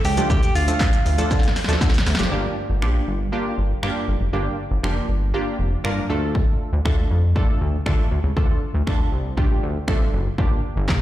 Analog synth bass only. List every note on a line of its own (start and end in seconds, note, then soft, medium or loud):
0.05 0.20 C#2 medium
0.30 0.46 D2 loud
0.55 0.71 D2 loud
1.06 1.21 D2 medium
1.31 1.46 D3 loud
1.69 1.76 D2 medium
1.81 1.89 D3 loud
2.07 2.14 D2 loud
2.19 2.27 F#1 medium
2.32 2.47 G1 loud
2.70 2.84 G1 medium
2.82 2.98 A#1 loud
3.07 3.31 G1 medium
3.58 3.73 G1 medium
3.83 3.91 G2 loud
4.08 4.16 G1 medium
4.21 4.29 F#1 medium
4.33 4.49 G1 loud
4.71 4.79 G1 loud
4.84 4.99 F1 loud
5.09 5.32 G1 medium
5.59 5.75 F1 medium
5.84 6.00 G1 loud
6.10 6.41 D2 loud
6.73 6.81 D2 loud
6.85 7.01 D2 medium
7.11 7.34 F2 medium
7.61 7.77 D2 loud
7.86 7.94 D3 loud
8.11 8.19 D2 medium
8.24 8.32 C#2 medium
8.37 8.52 D2 loud
8.74 8.82 D2 medium
8.87 9.03 D2 loud
9.12 9.36 C2 medium
9.63 9.78 D2 medium
9.88 10.03 C2 medium
10.13 10.29 F#1 medium
10.38 10.54 G1 loud
10.76 10.90 G1 loud
10.89 11.02 A#1 loud